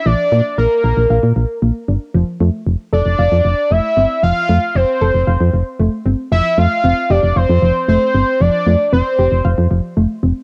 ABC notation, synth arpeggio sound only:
X:1
M:4/4
L:1/8
Q:1/4=115
K:Flyd
V:1 name="Synth arpeggio sound"
F, _B, z _B f z B, D | F, A, z A f z A, C | F, A, z A f z A, C | F, A, C G f F, A, C |
F, A, C G f F, A, C |]